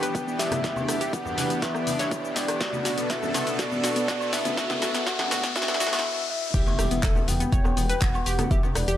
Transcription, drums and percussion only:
0.03 closed hi-hat, cabasa
0.15 kick, closed hi-hat, cabasa
0.28 cabasa
0.39 snare, open hi-hat, cabasa, high woodblock
0.51 cross-stick, closed hi-hat, high conga, low conga, cabasa
0.64 kick, snare, closed hi-hat, cabasa
0.76 high conga, cabasa, high woodblock
0.89 cross-stick, open hi-hat, cabasa
1.01 closed hi-hat, cabasa
1.13 kick, closed hi-hat, cabasa
1.25 low conga, cabasa, high woodblock
1.38 snare, open hi-hat, high conga, cabasa
1.50 closed hi-hat, cabasa
1.62 kick, snare, closed hi-hat, cabasa, high woodblock
1.75 cross-stick, cabasa
1.87 open hi-hat, high conga, cabasa
1.99 snare, closed hi-hat, cabasa
2.11 kick, closed hi-hat, cabasa, high woodblock
2.25 cabasa
2.36 snare, open hi-hat, cabasa
2.48 cross-stick, closed hi-hat, cabasa, high woodblock
2.61 kick, snare, closed hi-hat, cabasa
2.73 high conga, cabasa
2.85 snare, open hi-hat, cabasa
2.97 closed hi-hat, cabasa, high woodblock
3.10 kick, snare, closed hi-hat, cabasa
3.23 low conga, cabasa
3.34 snare, open hi-hat, high conga, cabasa, high woodblock
3.47 closed hi-hat, cabasa
3.59 kick, snare, closed hi-hat, cabasa
3.72 low conga, cabasa
3.84 snare, open hi-hat, cabasa, high woodblock
3.96 closed hi-hat, cabasa
4.08 kick, snare, closed hi-hat, cabasa
4.20 cabasa, high woodblock
4.33 snare, open hi-hat, cabasa
4.45 closed hi-hat, high conga, low conga, cabasa
4.57 kick, snare, closed hi-hat, cabasa
4.69 snare, high conga, cabasa, high woodblock
4.82 snare, open hi-hat, cabasa
4.94 snare, closed hi-hat, cabasa
5.07 kick, snare, closed hi-hat, cabasa, high woodblock
5.19 snare, low conga, cabasa
5.31 snare, open hi-hat, high conga, cabasa
5.44 kick, snare, closed hi-hat, cabasa
5.56 kick, snare, closed hi-hat, cabasa, high woodblock
5.62 snare
5.68 snare, cabasa
5.74 snare
5.80 snare, open hi-hat, high conga, cabasa
5.87 snare
5.93 snare, open hi-hat, cabasa, high woodblock
5.99 snare
6.54 kick, closed hi-hat, crash, cabasa
6.67 high conga, cabasa, high woodblock
6.79 cross-stick, open hi-hat, cabasa
6.91 closed hi-hat, cabasa
7.03 kick, clap, closed hi-hat, cabasa
7.15 low conga, cabasa, high woodblock
7.28 open hi-hat, high conga, cabasa
7.40 closed hi-hat, cabasa
7.52 kick, closed hi-hat, cabasa
7.64 cross-stick, low conga, cabasa, high woodblock
7.77 open hi-hat, cabasa
7.89 closed hi-hat, cabasa
8.01 kick, clap, closed hi-hat, cabasa
8.15 cabasa, high woodblock
8.26 open hi-hat, cabasa
8.39 cross-stick, closed hi-hat, high conga, low conga, cabasa
8.51 kick, closed hi-hat, cabasa
8.63 high conga, cabasa, high woodblock
8.75 cross-stick, open hi-hat, cabasa
8.88 closed hi-hat, cabasa

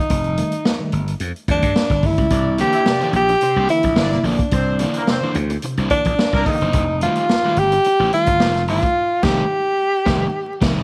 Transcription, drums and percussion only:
0.10 kick, closed hi-hat
0.24 closed hi-hat
0.37 closed hi-hat
0.52 closed hi-hat
0.65 snare
0.92 closed hi-hat
1.07 closed hi-hat
1.20 closed hi-hat
1.36 closed hi-hat
1.48 kick, closed hi-hat
1.62 kick, closed hi-hat
1.76 snare
1.89 kick, snare, closed hi-hat
2.03 kick, open hi-hat
2.18 kick, closed hi-hat
2.30 kick, closed hi-hat
2.58 closed hi-hat
2.72 closed hi-hat
2.86 snare
3.01 closed hi-hat
3.13 closed hi-hat
3.28 closed hi-hat
3.41 closed hi-hat
3.69 closed hi-hat
3.83 kick, closed hi-hat
3.96 snare
4.11 snare, closed hi-hat
4.24 open hi-hat
4.39 kick, closed hi-hat
4.51 kick, closed hi-hat
4.79 closed hi-hat
4.94 closed hi-hat
5.07 snare
5.34 closed hi-hat
5.50 closed hi-hat
5.62 closed hi-hat
5.77 closed hi-hat
5.90 kick, closed hi-hat
6.05 kick, closed hi-hat
6.19 snare
6.33 kick, snare
6.46 kick, open hi-hat
6.61 closed hi-hat
6.73 kick, closed hi-hat
7.01 closed hi-hat
7.15 closed hi-hat
7.29 snare
7.56 closed hi-hat
7.72 closed hi-hat
7.84 closed hi-hat
8.12 closed hi-hat
8.26 kick, closed hi-hat
8.40 snare
8.54 snare, closed hi-hat
8.68 open hi-hat
8.83 kick, closed hi-hat
9.23 kick, snare, crash
10.06 kick, snare
10.62 kick, snare, crash

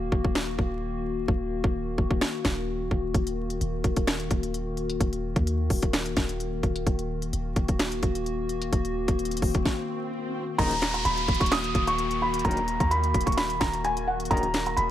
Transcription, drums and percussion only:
0.12 kick
0.24 kick
0.35 finger snap, snare
0.59 kick
1.28 kick
1.64 kick
1.98 kick
2.11 kick
2.21 finger snap, snare
2.45 finger snap, kick, snare
2.91 kick
3.14 kick, closed hi-hat
3.27 closed hi-hat
3.50 closed hi-hat
3.61 closed hi-hat
3.84 kick, closed hi-hat
3.96 kick, closed hi-hat
4.07 finger snap, snare, closed hi-hat
4.20 closed hi-hat
4.31 kick, closed hi-hat
4.43 closed hi-hat
4.54 closed hi-hat
4.77 closed hi-hat
4.90 closed hi-hat
5.00 kick, closed hi-hat
5.13 closed hi-hat
5.36 kick, closed hi-hat
5.47 closed hi-hat
5.70 kick, open hi-hat
5.82 kick, closed hi-hat
5.93 finger snap, snare, closed hi-hat
6.06 closed hi-hat
6.17 finger snap, kick, snare, closed hi-hat
6.29 closed hi-hat
6.40 closed hi-hat
6.63 kick, closed hi-hat
6.76 closed hi-hat
6.87 kick, closed hi-hat
6.99 closed hi-hat
7.22 closed hi-hat
7.33 closed hi-hat
7.56 kick, closed hi-hat
7.68 kick, closed hi-hat
7.79 finger snap, snare, closed hi-hat
7.92 closed hi-hat
8.03 kick, closed hi-hat
8.15 closed hi-hat
8.26 closed hi-hat
8.49 closed hi-hat
8.62 closed hi-hat
8.73 kick, closed hi-hat
8.85 closed hi-hat
9.08 kick, closed hi-hat
9.19 closed hi-hat
9.25 closed hi-hat
9.31 closed hi-hat
9.37 closed hi-hat
9.42 kick, open hi-hat
9.54 kick, closed hi-hat
9.66 kick, snare
10.59 kick, closed hi-hat, crash
10.71 closed hi-hat
10.82 finger snap, snare, closed hi-hat
10.94 closed hi-hat
11.05 closed hi-hat
11.17 closed hi-hat
11.28 kick, closed hi-hat
11.35 closed hi-hat
11.41 kick, closed hi-hat
11.46 closed hi-hat
11.52 finger snap, snare, closed hi-hat
11.64 closed hi-hat
11.75 kick, closed hi-hat
11.87 closed hi-hat
11.98 closed hi-hat
12.11 closed hi-hat
12.34 closed hi-hat
12.39 closed hi-hat
12.45 kick, closed hi-hat
12.51 closed hi-hat
12.57 closed hi-hat
12.68 closed hi-hat
12.80 kick, closed hi-hat
12.91 closed hi-hat
13.04 closed hi-hat
13.14 kick, closed hi-hat, open hi-hat
13.21 closed hi-hat
13.27 kick, closed hi-hat
13.32 closed hi-hat
13.38 finger snap, snare, closed hi-hat
13.50 closed hi-hat
13.61 finger snap, kick, snare, closed hi-hat
13.73 closed hi-hat
13.85 closed hi-hat
13.97 closed hi-hat
14.20 closed hi-hat
14.25 closed hi-hat
14.31 kick, closed hi-hat
14.37 closed hi-hat
14.43 closed hi-hat
14.54 finger snap, snare, closed hi-hat
14.66 closed hi-hat
14.77 closed hi-hat

